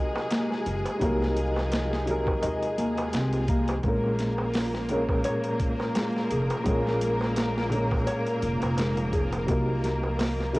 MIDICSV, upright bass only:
0, 0, Header, 1, 2, 480
1, 0, Start_track
1, 0, Key_signature, -5, "minor"
1, 0, Tempo, 705882
1, 688, Time_signature, 4, 2, 24, 8
1, 7202, End_track
2, 0, Start_track
2, 0, Title_t, "Upright bass"
2, 0, Program_c, 0, 32
2, 452, Note_on_c, 0, 30, 88
2, 567, Note_off_c, 0, 30, 0
2, 691, Note_on_c, 0, 36, 93
2, 1629, Note_off_c, 0, 36, 0
2, 1651, Note_on_c, 0, 39, 89
2, 2109, Note_off_c, 0, 39, 0
2, 2130, Note_on_c, 0, 36, 89
2, 2589, Note_off_c, 0, 36, 0
2, 2608, Note_on_c, 0, 34, 86
2, 3548, Note_off_c, 0, 34, 0
2, 4290, Note_on_c, 0, 29, 94
2, 4406, Note_off_c, 0, 29, 0
2, 4529, Note_on_c, 0, 34, 92
2, 5468, Note_off_c, 0, 34, 0
2, 5731, Note_on_c, 0, 29, 82
2, 5847, Note_off_c, 0, 29, 0
2, 5864, Note_on_c, 0, 29, 86
2, 6429, Note_off_c, 0, 29, 0
2, 6451, Note_on_c, 0, 36, 92
2, 7202, Note_off_c, 0, 36, 0
2, 7202, End_track
0, 0, End_of_file